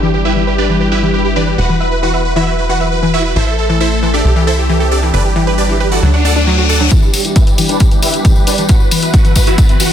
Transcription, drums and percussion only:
6.91 kick, closed hi-hat, tambourine
7.03 tambourine
7.14 open hi-hat, tambourine
7.25 closed hi-hat, tambourine
7.36 kick, closed hi-hat, tambourine
7.47 closed hi-hat, tambourine
7.58 open hi-hat, tambourine
7.68 closed hi-hat, tambourine
7.80 kick, closed hi-hat, tambourine
7.91 closed hi-hat, tambourine
8.02 open hi-hat, tambourine
8.13 closed hi-hat, tambourine
8.25 kick, closed hi-hat, tambourine
8.36 tambourine
8.47 open hi-hat, tambourine
8.58 closed hi-hat, tambourine
8.69 kick, closed hi-hat, tambourine
8.80 tambourine
8.91 open hi-hat, tambourine
9.02 closed hi-hat, tambourine
9.14 kick, closed hi-hat, tambourine
9.25 closed hi-hat, tambourine
9.36 kick, open hi-hat, tambourine
9.47 closed hi-hat, tambourine
9.58 kick, closed hi-hat, tambourine
9.69 closed hi-hat, tambourine
9.80 open hi-hat, tambourine

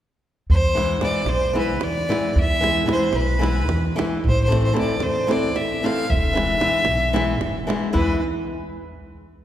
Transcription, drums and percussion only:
0.50 davul low
0.77 davul high
1.01 davul high
1.26 davul high
1.41 davul high
1.81 davul high
2.12 davul high
2.36 davul low
2.64 davul high
2.77 davul high
2.89 davul high
3.13 davul high
3.29 davul high
3.43 davul high
3.69 davul high
3.99 davul high
4.25 davul low
4.52 davul high
4.65 davul high
4.77 davul high
5.00 davul high
5.16 davul high
5.31 davul high
5.56 davul high
5.86 davul high
6.10 davul low
6.37 davul high
6.50 davul high
6.61 davul high
6.85 davul high
7.01 davul high
7.16 davul high
7.41 davul high
7.70 davul high
7.84 davul high
7.95 davul low

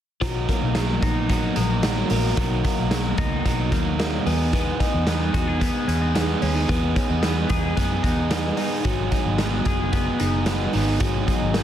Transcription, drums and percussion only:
0.22 kick, closed hi-hat
0.49 kick, closed hi-hat
0.75 snare, closed hi-hat
1.02 kick, closed hi-hat
1.29 kick, closed hi-hat
1.56 closed hi-hat
1.83 snare, closed hi-hat
2.10 open hi-hat
2.37 kick, closed hi-hat
2.65 kick, closed hi-hat
2.91 snare, closed hi-hat
3.18 kick, closed hi-hat
3.46 kick, closed hi-hat
3.72 kick, closed hi-hat
3.99 snare, closed hi-hat
4.26 open hi-hat
4.53 kick, closed hi-hat
4.80 kick, closed hi-hat
5.07 snare, closed hi-hat
5.34 kick, closed hi-hat
5.61 kick, closed hi-hat
5.89 closed hi-hat
6.15 snare, closed hi-hat
6.42 open hi-hat
6.69 kick, closed hi-hat
6.96 kick, closed hi-hat
7.23 snare, closed hi-hat
7.50 kick, closed hi-hat
7.77 kick, closed hi-hat
8.04 kick, closed hi-hat
8.31 snare, closed hi-hat
8.57 open hi-hat
8.85 kick, closed hi-hat
9.12 kick, closed hi-hat
9.38 snare, closed hi-hat
9.65 kick, closed hi-hat
9.93 kick, closed hi-hat
10.20 closed hi-hat
10.46 snare, closed hi-hat
10.73 open hi-hat
11.00 kick, closed hi-hat
11.28 kick, closed hi-hat
11.54 snare, closed hi-hat

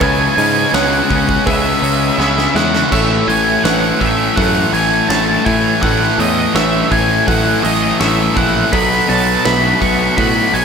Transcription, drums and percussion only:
0.01 kick, open hi-hat
0.38 open hi-hat
0.74 snare, open hi-hat
1.11 kick, open hi-hat
1.29 kick
1.47 kick, open hi-hat
1.84 open hi-hat
2.20 snare
2.38 snare
2.56 snare
2.75 snare
2.92 kick, crash, splash
3.29 open hi-hat
3.65 snare, open hi-hat
4.01 kick, open hi-hat
4.37 kick, open hi-hat
4.74 open hi-hat
5.10 snare, open hi-hat
5.46 kick, open hi-hat
5.83 kick, open hi-hat
6.01 snare
6.20 open hi-hat
6.56 snare, open hi-hat
6.92 kick, open hi-hat
7.28 kick, open hi-hat
7.64 open hi-hat
8.01 snare, open hi-hat
8.37 kick, open hi-hat
8.73 kick, open hi-hat
8.91 snare
9.10 open hi-hat
9.45 snare, open hi-hat
9.82 kick, open hi-hat
10.18 kick, open hi-hat
10.54 open hi-hat

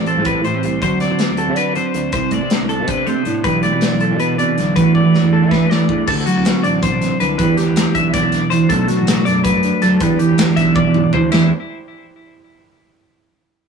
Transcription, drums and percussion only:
0.06 closed hi-hat
0.25 kick, closed hi-hat
0.44 closed hi-hat
0.63 closed hi-hat
0.82 kick, closed hi-hat
1.00 snare, closed hi-hat
1.19 snare, closed hi-hat
1.37 closed hi-hat
1.56 closed hi-hat
1.75 closed hi-hat
1.94 closed hi-hat
2.12 kick, closed hi-hat
2.31 kick, closed hi-hat
2.50 snare, closed hi-hat
2.69 closed hi-hat
2.88 kick, closed hi-hat
3.07 closed hi-hat
3.25 closed hi-hat
3.44 kick, closed hi-hat
3.63 closed hi-hat
3.81 snare, closed hi-hat
4.00 closed hi-hat
4.20 closed hi-hat
4.39 closed hi-hat
4.58 snare, closed hi-hat
4.76 kick, closed hi-hat
4.95 kick
5.14 snare
5.51 kick, snare
5.71 snare
5.89 kick
6.07 kick, crash
6.27 closed hi-hat
6.45 snare, closed hi-hat
6.64 closed hi-hat
6.82 kick, closed hi-hat
7.02 snare, closed hi-hat
7.20 closed hi-hat
7.39 kick, closed hi-hat
7.57 snare, closed hi-hat
7.76 snare, closed hi-hat
7.95 kick, closed hi-hat
8.14 kick, snare, closed hi-hat
8.32 snare, closed hi-hat
8.51 closed hi-hat
8.70 kick, closed hi-hat
8.88 snare, closed hi-hat
9.07 snare, closed hi-hat
9.26 snare, closed hi-hat
9.44 kick, closed hi-hat
9.63 closed hi-hat
9.82 snare, closed hi-hat
10.00 kick, closed hi-hat
10.19 closed hi-hat
10.38 snare, closed hi-hat
10.57 kick, snare, closed hi-hat
10.75 kick, high tom
10.94 mid tom
11.13 floor tom
11.32 snare, crash

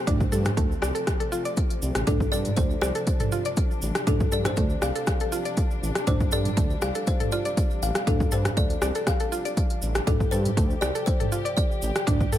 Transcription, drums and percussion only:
0.07 kick, closed hi-hat, mid tom, cabasa
0.21 kick, cabasa
0.32 cabasa
0.45 cross-stick, closed hi-hat, mid tom, cabasa
0.57 kick, closed hi-hat, cabasa
0.72 cabasa
0.82 cross-stick, cabasa
0.95 closed hi-hat, cabasa
1.07 kick, cross-stick, closed hi-hat, cabasa
1.20 closed hi-hat, cabasa
1.32 cabasa
1.45 closed hi-hat, cabasa
1.57 kick, closed hi-hat, cabasa
1.70 closed hi-hat, cabasa
1.82 cabasa
1.95 cross-stick, closed hi-hat, cabasa
2.07 kick, closed hi-hat, mid tom, cabasa
2.20 kick, cabasa
2.33 cabasa
2.45 closed hi-hat, mid tom, cabasa
2.57 kick, closed hi-hat, cabasa
2.70 cabasa
2.82 cross-stick, cabasa
2.95 closed hi-hat, cabasa
3.07 kick, closed hi-hat, cabasa
3.20 closed hi-hat, mid tom, cabasa
3.32 cabasa
3.45 closed hi-hat, cabasa
3.57 kick, closed hi-hat, cabasa
3.71 cabasa
3.82 cabasa
3.95 cross-stick, closed hi-hat, cabasa
4.07 kick, closed hi-hat, mid tom, cabasa
4.20 kick, cabasa
4.32 cabasa
4.45 cross-stick, closed hi-hat, mid tom, cabasa
4.57 kick, closed hi-hat, cabasa
4.70 cabasa
4.82 cross-stick, cabasa
4.96 closed hi-hat, cabasa
5.07 kick, cross-stick, closed hi-hat, cabasa
5.20 closed hi-hat, cabasa
5.32 cabasa
5.45 closed hi-hat, cabasa
5.57 kick, closed hi-hat, cabasa
5.71 cabasa
5.83 cabasa
5.95 cross-stick, closed hi-hat, cabasa
6.07 kick, closed hi-hat, mid tom, cabasa
6.20 kick, cabasa
6.32 cabasa
6.45 closed hi-hat, mid tom, cabasa
6.57 kick, closed hi-hat, cabasa
6.70 cabasa
6.82 cross-stick, cabasa
6.95 closed hi-hat, cabasa
7.07 kick, closed hi-hat, cabasa
7.20 closed hi-hat, mid tom, cabasa
7.32 cabasa
7.45 closed hi-hat, cabasa
7.57 kick, closed hi-hat, cabasa
7.70 cabasa
7.83 cabasa
7.95 cross-stick, closed hi-hat, cabasa
8.07 kick, closed hi-hat, mid tom, cabasa
8.20 kick, cabasa
8.32 cabasa
8.45 cross-stick, closed hi-hat, mid tom, cabasa
8.57 kick, closed hi-hat, cabasa
8.70 closed hi-hat, cabasa
8.82 cross-stick, cabasa
8.95 closed hi-hat, cabasa
9.07 kick, cross-stick, closed hi-hat, cabasa
9.20 closed hi-hat, cabasa
9.32 cabasa
9.45 closed hi-hat, cabasa
9.57 kick, closed hi-hat, cabasa
9.70 closed hi-hat, cabasa
9.82 cabasa
9.95 cross-stick, closed hi-hat, cabasa
10.07 kick, closed hi-hat, mid tom, cabasa
10.20 kick, cabasa
10.32 cabasa
10.45 closed hi-hat, mid tom, cabasa
10.57 kick, closed hi-hat, cabasa
10.70 cabasa
10.82 cross-stick, cabasa
10.95 closed hi-hat, cabasa
11.06 kick, closed hi-hat, cabasa
11.20 closed hi-hat, mid tom, cabasa
11.32 cabasa
11.46 closed hi-hat, cabasa
11.57 kick, closed hi-hat, cabasa
11.71 cabasa
11.82 cabasa
11.95 cross-stick, closed hi-hat, cabasa
12.07 kick, closed hi-hat, mid tom, cabasa
12.21 kick, cabasa
12.33 cabasa

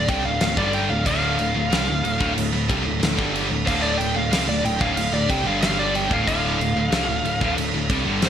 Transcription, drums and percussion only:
0.09 kick, crash
0.41 snare, crash
0.57 kick
0.73 crash
1.06 kick, crash
1.39 crash
1.72 snare, crash
2.05 crash
2.21 kick
2.38 crash
2.70 kick, crash
3.03 snare, crash
3.19 kick
3.36 crash
3.67 kick, crash
4.01 crash
4.33 snare, crash
4.65 crash
4.81 kick
4.97 crash
5.30 kick, crash
5.62 snare, crash
5.95 crash
6.11 kick
6.28 kick, crash
6.61 crash
6.92 snare, crash
7.25 crash
7.41 kick
7.58 crash
7.90 kick, crash
8.22 snare, crash

